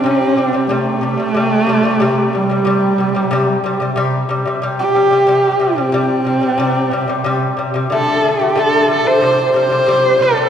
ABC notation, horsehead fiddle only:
X:1
M:4/4
L:1/16
Q:1/4=92
K:none
V:1 name="Horsehead fiddle"
C4 A,8- A,2 G,2- | G,6- G, z6 G3- | G3 C8- C3 z2 | A2 G2 A2 A c3 c4 A2 |]